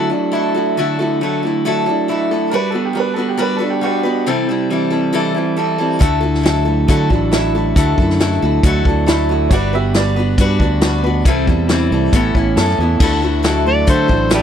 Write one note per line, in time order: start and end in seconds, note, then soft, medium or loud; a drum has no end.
0.00 0.11 D3 medium
0.00 0.12 D3 medium
0.00 1.21 F#3 medium
0.00 0.11 A3 medium
0.00 0.54 A3 medium
0.00 0.11 E4 medium
0.10 1.87 D4 medium
0.10 0.32 E4 soft
0.10 0.33 F#4 soft
0.10 0.33 A4 soft
0.32 0.55 A3 medium
0.32 0.55 E4 medium
0.32 1.43 E4 medium
0.32 0.55 F#4 medium
0.32 0.53 A4 medium
0.55 0.98 A3 medium
0.55 0.77 E4 soft
0.55 0.78 F#4 soft
0.55 0.77 A4 soft
0.77 1.87 D3 medium
0.77 1.00 D3 medium
0.77 1.00 A3 medium
0.77 1.00 E4 medium
0.77 0.99 F#4 medium
0.77 0.98 A4 medium
0.99 1.43 A3 medium
0.99 1.22 E4 soft
0.99 1.22 F#4 soft
0.99 1.21 A4 soft
1.21 1.64 F#3 medium
1.21 1.43 A3 medium
1.21 1.44 E4 medium
1.21 1.44 F#4 medium
1.21 1.42 A4 medium
1.43 2.30 A3 medium
1.43 1.65 E4 soft
1.43 1.66 F#4 soft
1.43 1.65 A4 soft
1.65 1.87 D3 medium
1.65 2.53 F#3 medium
1.65 1.88 A3 medium
1.65 1.88 E4 medium
1.65 1.86 F#4 medium
1.65 1.85 A4 medium
1.86 2.53 D4 medium
1.86 2.08 E4 soft
1.86 2.09 F#4 soft
1.86 2.09 A4 medium
2.08 2.31 A3 medium
2.08 2.31 E4 medium
2.08 2.53 E4 medium
2.08 2.32 F#4 medium
2.08 2.30 A4 medium
2.31 2.53 A3 medium
2.31 2.52 E4 soft
2.31 2.53 F#4 soft
2.31 2.53 A4 soft
2.50 2.74 G3 medium
2.50 2.95 G3 medium
2.50 2.74 D4 medium
2.50 2.73 F#4 medium
2.50 2.53 A#4 medium
2.50 2.71 B4 medium
2.55 2.68 B4 medium
2.70 2.95 F#4 soft
2.70 2.83 A4 medium
2.70 2.95 B4 medium
2.75 3.16 B3 medium
2.75 2.94 D4 soft
2.85 2.98 G4 medium
2.93 3.17 G3 medium
2.93 3.39 G3 medium
2.93 3.18 D4 medium
2.93 3.17 F#4 medium
2.93 2.98 A#4 medium
2.93 3.15 B4 medium
3.00 3.12 B4 medium
3.14 4.04 B3 medium
3.14 3.27 A4 medium
3.14 3.38 B4 soft
3.18 3.37 D4 soft
3.18 3.38 F#4 soft
3.29 3.41 G4 medium
3.38 3.61 G3 medium
3.38 4.27 G3 medium
3.38 3.60 D4 medium
3.38 3.59 F#4 medium
3.38 3.40 A#4 medium
3.38 3.57 B4 medium
3.42 3.56 B4 medium
3.56 3.82 F#4 soft
3.56 3.70 A4 medium
3.56 3.82 B4 soft
3.61 3.81 D4 soft
3.61 4.27 D4 medium
3.70 3.84 G4 medium
3.81 4.04 G3 medium
3.81 4.05 D4 medium
3.81 3.84 F#4 medium
3.81 4.04 F#4 medium
3.81 4.27 F#4 medium
3.81 4.02 B4 medium
3.86 5.12 G4 medium
4.03 4.27 B3 medium
4.03 4.27 D4 soft
4.03 4.27 F#4 soft
4.03 4.26 B4 medium
4.26 5.36 C3 medium
4.26 4.49 C3 medium
4.26 4.49 E3 medium
4.26 4.49 G3 medium
4.26 4.49 C4 medium
4.26 4.49 E4 medium
4.26 4.48 A4 medium
4.48 4.91 G3 medium
4.48 4.69 G3 soft
4.48 4.70 C4 soft
4.48 4.71 E4 medium
4.48 4.71 A4 soft
4.70 5.13 E3 medium
4.70 4.93 G3 medium
4.70 4.91 C4 medium
4.70 4.90 E4 medium
4.70 4.89 A4 medium
4.90 5.78 G3 medium
4.90 5.12 G3 soft
4.90 5.13 C4 soft
4.90 5.13 E4 soft
4.90 5.13 A4 soft
5.13 5.35 C3 medium
5.13 5.36 E3 medium
5.13 6.04 E3 medium
5.13 5.36 G3 medium
5.13 5.36 C4 medium
5.13 5.35 E4 medium
5.13 5.33 A4 medium
5.34 5.55 G3 soft
5.34 5.56 C4 soft
5.34 6.04 E4 medium
5.34 5.57 E4 soft
5.34 5.57 A4 soft
5.57 5.79 G3 medium
5.57 5.79 C4 medium
5.57 5.78 E4 medium
5.57 7.32 A4 medium
5.57 5.77 A4 medium
5.78 6.01 G3 medium
5.78 5.99 G3 soft
5.78 6.00 C4 soft
5.78 5.99 E4 soft
5.78 6.00 A4 soft
5.99 6.85 D2 medium
5.99 6.22 D3 medium
5.99 7.10 D3 medium
5.99 6.23 A3 medium
5.99 6.22 E4 medium
5.99 6.21 F#4 medium
5.99 6.19 A4 medium
5.99 kick medium
5.99 closed hi-hat soft
6.21 6.67 A3 medium
6.21 6.42 E4 soft
6.21 6.43 F#4 soft
6.21 6.44 A4 medium
6.35 snare soft
6.42 6.87 F#3 medium
6.42 6.65 A3 medium
6.42 6.66 E4 medium
6.42 6.65 F#4 medium
6.42 closed hi-hat medium
6.46 6.64 A4 medium
6.46 snare medium
6.65 7.53 A3 medium
6.65 6.87 E4 soft
6.65 6.88 F#4 soft
6.65 6.88 A4 medium
6.88 7.10 D3 medium
6.88 7.09 D3 medium
6.88 8.20 F#3 medium
6.88 7.10 A3 medium
6.88 7.11 E4 medium
6.88 7.11 F#4 medium
6.88 7.08 A4 medium
6.88 kick medium
6.88 closed hi-hat medium
7.10 7.72 A1 medium
7.10 8.86 D4 medium
7.10 7.32 E4 soft
7.10 7.33 F#4 soft
7.10 7.32 A4 medium
7.10 kick medium
7.32 7.54 A3 medium
7.32 8.42 E4 medium
7.32 7.55 E4 medium
7.32 7.55 F#4 medium
7.32 7.54 A4 medium
7.32 snare medium
7.32 closed hi-hat medium
7.55 7.96 A3 medium
7.55 7.76 E4 soft
7.55 7.77 F#4 soft
7.55 7.77 A4 soft
7.76 7.96 D2 medium
7.76 7.98 D3 medium
7.76 8.86 D3 medium
7.76 7.98 A3 medium
7.76 7.99 E4 medium
7.76 7.99 F#4 medium
7.76 7.98 A4 medium
7.76 kick loud
7.76 closed hi-hat medium
7.98 8.38 F#2 medium
7.98 8.41 A3 medium
7.98 8.21 F#4 soft
7.98 8.20 A4 medium
7.98 kick medium
8.02 8.19 E4 soft
8.10 snare soft
8.20 8.63 F#3 medium
8.20 8.42 A3 medium
8.20 8.42 E4 medium
8.20 8.42 F#4 medium
8.20 8.41 A4 medium
8.20 snare medium
8.20 closed hi-hat medium
8.42 8.63 D2 medium
8.42 9.29 A3 medium
8.42 8.65 E4 soft
8.42 8.64 F#4 soft
8.42 8.64 A4 medium
8.63 8.84 D2 medium
8.63 8.86 D3 medium
8.63 9.51 F#3 medium
8.63 8.86 A3 medium
8.63 8.87 E4 medium
8.63 8.87 F#4 medium
8.63 8.85 A4 medium
8.63 kick loud
8.63 closed hi-hat medium
8.85 9.47 D2 medium
8.85 9.52 D4 medium
8.85 9.08 F#4 soft
8.85 9.08 A4 soft
8.85 kick medium
8.89 9.06 E4 soft
9.06 9.29 A3 medium
9.06 9.51 E4 medium
9.06 9.29 E4 medium
9.06 9.30 F#4 medium
9.06 9.28 A4 medium
9.06 snare loud
9.06 closed hi-hat medium
9.29 9.52 A3 medium
9.29 9.52 E4 soft
9.29 9.52 F#4 soft
9.29 9.51 A4 soft
9.49 10.34 G1 medium
9.49 9.94 G3 medium
9.49 9.74 G3 medium
9.49 9.74 D4 medium
9.49 9.73 F#4 medium
9.49 9.52 C#5 medium
9.49 kick loud
9.49 closed hi-hat medium
9.54 9.72 B4 medium
9.54 9.74 D5 medium
9.73 10.15 B3 medium
9.73 9.96 D4 soft
9.73 9.96 F#4 soft
9.73 9.94 G4 medium
9.73 9.95 B4 medium
9.73 9.95 E5 medium
9.94 10.37 G3 medium
9.94 10.17 G3 medium
9.94 10.18 D4 medium
9.94 10.17 F#4 medium
9.94 11.23 D5 medium
9.94 snare medium
9.94 closed hi-hat medium
9.98 10.15 B4 medium
10.16 11.01 B3 medium
10.16 10.39 D4 soft
10.16 10.39 F#4 soft
10.16 10.39 B4 medium
10.38 10.58 G2 medium
10.38 11.26 G3 medium
10.38 10.61 G3 medium
10.38 10.61 D4 medium
10.38 10.61 F#4 medium
10.38 10.60 B4 medium
10.38 kick loud
10.38 closed hi-hat medium
10.59 11.22 D2 medium
10.59 11.26 D4 medium
10.59 10.83 F#4 soft
10.59 10.83 B4 medium
10.59 kick medium
10.64 10.83 D4 soft
10.81 11.05 G3 medium
10.81 11.05 D4 medium
10.81 11.26 F#4 medium
10.81 11.05 F#4 medium
10.81 snare loud
10.81 closed hi-hat medium
10.85 11.02 B4 medium
11.02 11.25 B3 medium
11.02 11.26 B4 soft
11.06 11.27 D4 soft
11.06 11.27 F#4 soft
11.25 11.46 C2 medium
11.25 12.12 C3 medium
11.25 11.48 C3 medium
11.25 11.48 E3 medium
11.25 11.48 G3 medium
11.25 11.48 C4 medium
11.25 11.47 E4 medium
11.25 11.46 A4 medium
11.25 kick medium
11.25 closed hi-hat medium
11.46 11.88 E2 medium
11.46 11.89 G3 medium
11.46 11.69 G3 soft
11.46 11.70 C4 soft
11.46 11.70 E4 soft
11.46 11.70 A4 medium
11.46 kick medium
11.68 12.13 E3 medium
11.68 11.92 G3 medium
11.68 11.92 C4 medium
11.68 snare medium
11.68 closed hi-hat medium
11.72 11.91 E4 medium
11.72 11.91 A4 medium
11.90 12.12 C2 medium
11.90 12.13 G3 medium
11.90 12.14 G3 soft
11.90 12.14 C4 soft
11.90 12.14 E4 soft
11.90 12.14 A4 soft
12.12 12.33 A1 medium
12.12 12.99 A2 medium
12.12 12.35 A2 medium
12.12 12.35 E3 medium
12.12 12.36 B3 medium
12.12 12.36 C#4 medium
12.12 12.35 E4 medium
12.12 12.34 A4 medium
12.12 kick loud
12.12 closed hi-hat medium
12.35 12.55 A1 medium
12.35 12.56 B3 soft
12.35 13.01 C#4 medium
12.35 12.57 C#4 soft
12.35 12.58 E4 soft
12.35 12.57 A4 soft
12.35 kick medium
12.56 12.76 F#2 medium
12.56 12.79 B3 medium
12.56 12.80 C#4 medium
12.56 12.80 E4 medium
12.56 13.01 A4 medium
12.56 snare medium
12.56 closed hi-hat medium
12.60 12.79 A4 medium
12.68 snare soft
12.78 12.99 E2 medium
12.78 13.01 B3 medium
12.78 13.02 C#4 soft
12.78 13.01 E4 soft
12.78 13.02 A4 soft
12.83 13.02 B3 soft
13.00 13.84 D2 medium
13.00 14.10 D3 medium
13.00 13.23 D3 medium
13.00 14.42 A3 medium
13.00 13.24 A3 medium
13.00 14.42 D4 medium
13.00 14.42 E4 medium
13.00 13.23 E4 medium
13.00 14.42 F#4 medium
13.00 13.22 F#4 medium
13.00 13.21 A4 medium
13.00 kick medium
13.00 crash medium
13.22 13.65 A3 medium
13.22 13.42 E4 soft
13.22 13.43 F#4 medium
13.22 13.44 A4 medium
13.43 13.87 F#3 medium
13.43 13.66 A3 medium
13.43 13.66 E4 medium
13.43 13.66 F#4 medium
13.43 13.65 A4 medium
13.43 snare loud
13.43 closed hi-hat medium
13.66 14.42 A3 medium
13.66 13.87 E4 soft
13.66 13.87 F#4 soft
13.66 13.87 A4 soft
13.66 13.88 D5 medium
13.87 14.09 D3 medium
13.87 14.08 D3 medium
13.87 14.42 F#3 medium
13.87 14.10 A3 medium
13.87 14.10 E4 medium
13.87 14.08 F#4 medium
13.87 14.07 A4 medium
13.87 14.31 C5 medium
13.87 kick loud
13.87 closed hi-hat medium
14.08 14.42 A1 medium
14.08 14.42 D4 medium
14.08 14.30 E4 soft
14.08 14.31 F#4 soft
14.08 14.31 A4 soft
14.08 kick medium
14.30 14.42 A3 medium
14.30 14.42 E4 medium
14.30 14.42 F#4 medium
14.30 14.42 A4 medium
14.30 snare loud
14.30 closed hi-hat medium
14.34 14.42 G4 medium
14.34 14.42 B4 medium
14.34 14.42 D5 medium